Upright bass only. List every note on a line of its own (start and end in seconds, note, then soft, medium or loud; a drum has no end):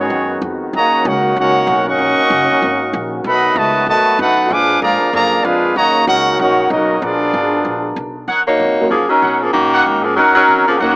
0.10 0.41 F#2 medium
0.42 0.72 F2 loud
0.73 1.04 D#2 medium
1.05 1.36 C#2 loud
1.36 1.66 C#2 loud
1.67 1.98 B1 loud
1.98 2.17 A#1 medium
2.19 muted upright bass stroke soft
2.30 2.49 F#1 loud
2.51 muted upright bass stroke soft
2.62 2.93 G#1 medium
2.93 3.24 A#1 loud
3.24 3.55 B1 medium
3.55 3.86 C#2 loud
3.86 4.05 D#2 medium
4.07 muted upright bass stroke soft
4.19 4.49 F#2 loud
4.50 4.81 A#2 medium
4.82 5.00 G#2 medium
5.02 muted upright bass stroke soft
5.13 5.44 F#2 medium
5.44 5.75 F2 medium
5.76 6.07 D#2 medium
6.07 6.38 C#2 loud
6.39 6.70 A#1 medium
6.70 7.01 B1 medium
7.02 7.33 A#1 medium
7.34 7.64 G#1 medium
7.65 7.95 A#1 medium
7.96 8.27 B1 medium
8.28 8.58 D#2 medium
8.60 8.78 F2 medium
8.80 muted upright bass stroke soft
8.91 9.21 F#2 medium
9.22 9.53 B2 medium
9.55 9.85 A#2 medium
9.86 10.16 G#2 medium
10.18 10.48 F#2 medium
10.48 10.79 F2 medium
10.80 10.96 D#2 medium